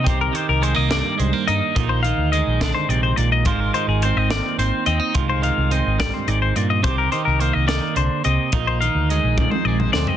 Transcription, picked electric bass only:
X:1
M:6/8
L:1/16
Q:3/8=71
K:Ablyd
V:1 name="Picked electric bass" clef=bass
C,,2 z C,,2 C,,2 z C,, z G,, z | B,,,3 D,,2 B,,,2 z B,,,2 B,,,2 | A,,,2 z A,,,2 A,,,2 z A,,, z E,, z | C,,3 C,,2 A,,,2 z A,,,2 G,,2 |
C,,2 z C,,2 C,,2 z C,, z C,, z | B,,,3 D,,2 B,,,2 z B,,,2 D,, z |]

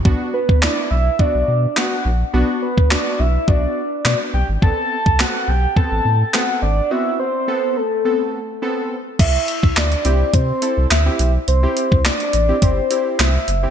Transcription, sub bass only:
X:1
M:4/4
L:1/16
Q:1/4=105
K:Clyd
V:1 name="Sub bass" clef=bass
B,,, z2 D,,2 z B,,,2 z B,,, B,,2 z2 _B,,,2 | B,,, z2 D,,2 z B,,,2 B,,,2 z2 B,, z B,,, ^G,,, | A,,, z2 C,,2 z B,,,2 z A,,, A,,2 z2 ^G,,,2 | z16 |
C,,2 z C,, D,,2 C,,2 C,2 z C,, D,,2 B,,,2 | C,,2 z C,,2 z A,,,2 G,,,2 z2 C,,2 F,,,2 |]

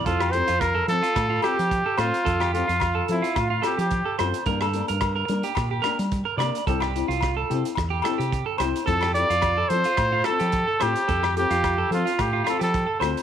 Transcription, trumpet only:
X:1
M:4/4
L:1/16
Q:"Swing 16ths" 1/4=109
K:F
V:1 name="Trumpet"
F2 c2 B2 A4 G4 F2- | F2 F4 E2 F2 G G3 z2 | z16 | z16 |
A2 d4 c4 A4 G2- | G2 G4 F2 G2 A A3 z2 |]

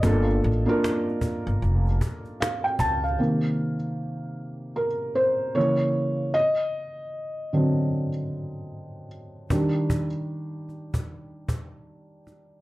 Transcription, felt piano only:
X:1
M:4/4
L:1/16
Q:"Swing 16ths" 1/4=76
K:Cdor
V:1 name="Felt piano"
e z8 z3 f g a f- | f z6 z B2 c2 ^c4 | e12- e2 z2 | z16 |]
V:2 name="Felt piano"
[B,DFA]2 z [B,DFB]6 z6 z | [C,E,B,]2 z8 z2 [^C,=E,^A,]4 | z6 [D,^F,C]2 z8 | [E,G,D]2 z12 z2 |]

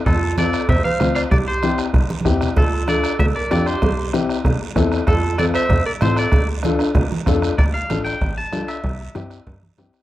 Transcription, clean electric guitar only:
X:1
M:4/4
L:1/8
Q:1/4=191
K:Dm
V:1 name="Clean electric guitar"
A2 d2 e f2 f | d c2 z4 z | A2 d2 e d d c- | c2 z6 |
A2 d e2 d c d- | d z6 z | d f2 g2 a2 e- | e6 z2 |]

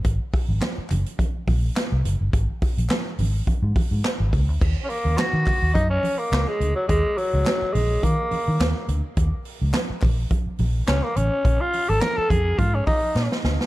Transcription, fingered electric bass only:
X:1
M:4/4
L:1/16
Q:"Swing 16ths" 1/4=105
K:Abmix
V:1 name="Fingered electric bass" clef=bass
A,,, z2 A,,, z2 G,,, z3 B,,,2 z C,, G,,, =G,,, | A,,, z2 B,,, z2 A,,,2 z A,, z A,, z A,,, D,, =D,, | E,, z2 E,, z E, z E,, G,,2 z2 D,, z =D,, z | E,, z2 D,, z2 B,,,2 E, z2 E, E,, z =D,, z |
E,, z2 D,, z2 B,,,2 z2 B,,,2 D,, z =A,,, z | B,,, z2 A,,, z2 F,,2 A,,2 z2 B,, z =D,, z |]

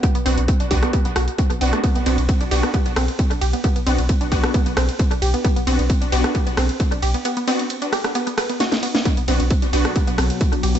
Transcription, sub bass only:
X:1
M:4/4
L:1/16
Q:1/4=133
K:Bphr
V:1 name="Sub bass" clef=bass
z B,,, B,,, B,,, z B,,, B,,, z2 B,,, B,,, z2 B,,, B,,, z | z B,,, B,,, B,,, z B,,, B,,, z2 B,,, B,,, z2 B,,, B,,, z | z B,,, B,,, B,,, z B,,, B,,, z2 B,,, B,,, z2 B,,, B,,, z | z B,,, B,,, B,,, z B,,, B,,, z2 B,,, B,,, z2 B,,, B,,, z |
z16 | z B,,, B,,, B,,, z B,,, B,,, z2 B,,, B,,, z2 B,,, B,,, z |]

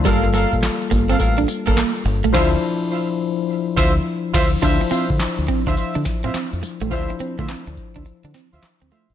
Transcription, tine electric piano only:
X:1
M:4/4
L:1/8
Q:"Swing 16ths" 1/4=105
K:Dm
V:1 name="Tine electric piano"
[G,B,FA]8 | [F,DEc] z6 z | [F,DEc]8 | [F,DEc]8 |]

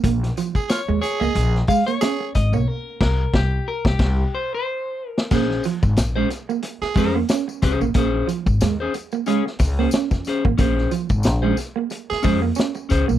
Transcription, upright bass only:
X:1
M:4/4
L:1/16
Q:"Swing 16ths" 1/4=91
K:Bbdor
V:1 name="Upright bass" clef=bass
B,,,2 z3 E,, z D,, B,,,2 z4 A,,, _C,, | z2 C,,2 C,,2 z C,, C,,2 z6 | B,,,2 z A,,, B,,,2 z4 F,,2 z2 D,, =A,,, | B,,,2 z A,,, E,,2 z4 D,,2 z F,, z =A,,, |
B,,,2 z A,,, B,,,2 z4 F,,2 z2 D,, _C,, |]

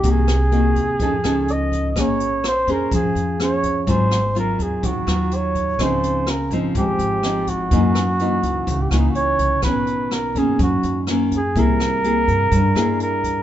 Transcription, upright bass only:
X:1
M:4/4
L:1/8
Q:1/4=125
K:Cphr
V:1 name="Upright bass" clef=bass
C,,3 E,, F,, ^C,,3 | B,,,3 F,, F,, F,,3 | A,,,3 E,, E,, E,,3 | D,,3 A,,, A,,, A,,,3 |
_G,,3 D,, D,, D,, D,, C,, | =B,,,3 ^F,, F,, F,,3 | C,,3 G,, G,, G,,3 |]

